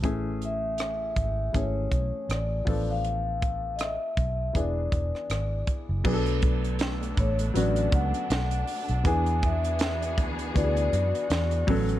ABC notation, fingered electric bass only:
X:1
M:4/4
L:1/16
Q:"Swing 16ths" 1/4=80
K:Emix
V:1 name="Fingered electric bass" clef=bass
A,,,6 G,,,2 G,,,2 B,,, z A,,,2 A,,,2- | A,,,6 B,,,2 E,,,2 E,,, z G,,,2 z F,,, | B,,,6 A,,,2 A,,,2 C,, z B,,,2 z B,,, | E,,6 D,,2 D,,2 F,, z E,,2 A,,,2 |]